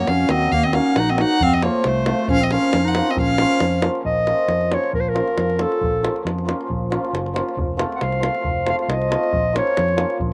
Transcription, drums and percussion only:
0.07 davul high medium
0.20 davul high soft
0.29 davul high medium
0.42 davul high soft
0.52 davul low medium
0.73 davul high medium
0.96 davul high medium
1.18 davul high medium
1.31 davul high soft
1.40 davul low medium
1.62 davul high medium
1.84 davul high medium
2.06 davul high medium
2.19 davul high soft
2.28 davul low medium
2.51 davul high medium
2.73 davul high medium
2.95 davul high medium
3.07 davul high soft
3.17 davul low loud
3.29 davul high soft
3.38 davul high medium
3.51 davul high soft
3.60 davul high medium
3.82 davul high medium
3.95 davul high soft
4.05 davul low medium
4.27 davul high medium
4.38 davul high soft
4.49 davul high medium
4.61 davul high soft
4.72 davul high medium
4.84 davul high soft
4.93 davul low medium
5.16 davul high medium
5.28 davul high soft
5.38 davul high medium
5.50 davul high soft
5.59 davul high medium
5.72 davul high soft
5.83 davul low medium
6.05 davul high medium
6.16 davul high soft
6.27 davul high medium
6.38 davul high soft
6.49 davul high medium
6.61 davul high soft
6.71 davul low medium
6.92 davul high medium
7.05 davul high soft
7.15 davul high medium
7.26 davul high soft
7.36 davul high medium
7.49 davul high soft
7.58 davul low loud
7.79 davul high medium
7.92 davul high soft
8.01 davul high medium
8.12 davul high soft
8.23 davul high medium
8.35 davul high soft
8.44 davul low medium
8.67 davul high medium
8.79 davul high soft
8.90 davul high medium
9.02 davul high soft
9.12 davul high medium
9.23 davul high soft
9.33 davul low medium
9.56 davul high medium
9.67 davul high soft
9.77 davul high medium
9.88 davul high soft
9.98 davul high medium
10.10 davul high soft
10.20 davul low medium

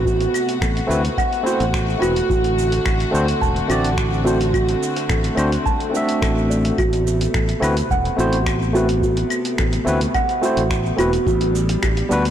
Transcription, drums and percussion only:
0.05 kick loud
0.05 cabasa soft
0.21 closed hi-hat soft
0.21 cabasa soft
0.34 cabasa medium
0.34 claves medium
0.49 closed hi-hat medium
0.49 cabasa soft
0.62 finger snap loud
0.62 kick loud
0.62 cabasa soft
0.77 closed hi-hat soft
0.77 cabasa soft
0.91 cabasa medium
1.05 closed hi-hat medium
1.05 cabasa soft
1.18 kick loud
1.18 cabasa soft
1.18 claves medium
1.33 closed hi-hat soft
1.33 cabasa soft
1.47 cabasa medium
1.60 closed hi-hat soft
1.60 cabasa soft
1.74 finger snap loud
1.74 kick loud
1.74 cabasa soft
1.90 cabasa soft
2.02 cabasa medium
2.02 claves medium
2.16 closed hi-hat medium
2.16 cabasa soft
2.30 kick loud
2.30 cabasa soft
2.44 closed hi-hat soft
2.44 cabasa soft
2.58 cabasa medium
2.72 closed hi-hat medium
2.72 cabasa soft
2.85 finger snap loud
2.85 kick loud
2.85 cabasa soft
2.85 claves medium
3.00 closed hi-hat soft
3.00 cabasa soft
3.15 cabasa medium
3.28 closed hi-hat medium
3.28 cabasa soft
3.41 kick loud
3.41 cabasa soft
3.56 closed hi-hat soft
3.56 cabasa soft
3.70 cabasa medium
3.70 claves medium
3.85 closed hi-hat soft
3.85 cabasa soft
3.98 finger snap medium
3.98 kick loud
3.98 cabasa soft
4.13 cabasa soft
4.27 cabasa medium
4.41 closed hi-hat medium
4.41 cabasa soft
4.54 kick loud
4.54 cabasa soft
4.54 claves medium
4.69 closed hi-hat soft
4.69 cabasa soft
4.83 cabasa medium
4.96 closed hi-hat medium
4.96 cabasa soft
5.09 finger snap medium
5.09 kick medium
5.09 cabasa soft
5.24 closed hi-hat soft
5.24 cabasa soft
5.37 cabasa medium
5.37 claves medium
5.52 closed hi-hat soft
5.52 cabasa soft
5.66 kick loud
5.66 cabasa soft
5.80 closed hi-hat soft
5.80 cabasa soft
5.95 cabasa medium
6.09 closed hi-hat soft
6.09 cabasa soft
6.22 finger snap loud
6.22 kick loud
6.22 cabasa soft
6.22 claves medium
6.38 cabasa soft
6.51 cabasa medium
6.65 closed hi-hat medium
6.65 cabasa soft
6.78 kick loud
6.78 cabasa soft
6.78 claves medium
6.93 closed hi-hat soft
6.93 cabasa soft
7.07 cabasa medium
7.21 closed hi-hat medium
7.21 cabasa soft
7.34 finger snap medium
7.34 kick medium
7.34 cabasa soft
7.49 closed hi-hat soft
7.49 cabasa soft
7.63 cabasa medium
7.63 claves medium
7.77 closed hi-hat medium
7.77 cabasa soft
7.90 kick loud
7.90 cabasa soft
8.05 closed hi-hat soft
8.05 cabasa soft
8.19 cabasa medium
8.33 closed hi-hat medium
8.33 cabasa soft
8.46 finger snap medium
8.46 kick loud
8.46 cabasa soft
8.46 claves medium
8.62 cabasa soft
8.75 cabasa medium
8.89 closed hi-hat medium
8.89 cabasa soft
9.02 kick medium
9.02 cabasa soft
9.17 closed hi-hat soft
9.17 cabasa soft
9.30 cabasa medium
9.30 claves medium
9.45 closed hi-hat medium
9.45 cabasa soft
9.58 finger snap medium
9.58 kick medium
9.58 cabasa soft
9.73 closed hi-hat soft
9.73 cabasa soft
9.87 cabasa medium
10.01 closed hi-hat medium
10.01 cabasa soft
10.14 kick loud
10.14 cabasa soft
10.14 claves medium
10.29 closed hi-hat soft
10.29 cabasa soft
10.43 cabasa medium
10.57 closed hi-hat medium
10.57 cabasa soft
10.71 finger snap medium
10.71 kick medium
10.71 cabasa soft
10.86 cabasa soft
10.99 cabasa medium
10.99 claves medium
11.13 closed hi-hat medium
11.13 cabasa soft
11.27 kick loud
11.27 cabasa soft
11.41 closed hi-hat soft
11.41 cabasa soft
11.55 cabasa medium
11.69 closed hi-hat medium
11.69 cabasa soft
11.83 finger snap loud
11.83 kick medium
11.83 cabasa soft
11.83 claves medium
11.97 closed hi-hat soft
11.97 cabasa soft
12.11 cabasa medium
12.25 closed hi-hat medium
12.25 cabasa soft

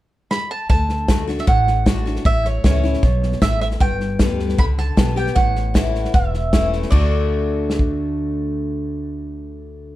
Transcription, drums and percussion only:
0.31 snare medium
0.70 kick medium
0.70 snare soft
0.89 snare soft
1.08 kick medium
1.08 snare loud
1.08 hi-hat pedal medium
1.28 snare soft
1.38 snare soft
1.47 kick loud
1.47 snare soft
1.67 snare soft
1.86 kick medium
1.86 snare loud
1.86 hi-hat pedal medium
2.06 snare soft
2.16 snare soft
2.25 kick loud
2.25 snare soft
2.45 snare soft
2.64 kick medium
2.64 snare loud
2.64 hi-hat pedal medium
2.84 snare soft
2.94 snare soft
3.03 kick loud
3.03 snare soft
3.23 snare soft
3.32 snare soft
3.42 kick medium
3.42 snare medium
3.42 hi-hat pedal medium
3.61 snare soft
3.71 snare soft
3.80 kick loud
3.80 snare soft
4.00 snare soft
4.19 kick medium
4.19 snare loud
4.19 hi-hat pedal medium
4.39 snare soft
4.49 snare soft
4.58 kick loud
4.58 snare soft
4.78 snare soft
4.97 kick medium
4.97 snare loud
4.97 hi-hat pedal medium
5.17 snare soft
5.26 snare soft
5.36 kick medium
5.36 snare soft
5.56 snare soft
5.75 kick medium
5.75 snare loud
5.75 hi-hat pedal medium
5.95 snare soft
6.05 snare soft
6.14 kick loud
6.14 snare soft
6.34 snare soft
6.53 kick medium
6.53 snare medium
6.53 hi-hat pedal medium
6.73 snare soft
6.82 snare soft
6.92 kick medium
6.92 crash medium
7.70 snare medium
7.79 kick medium

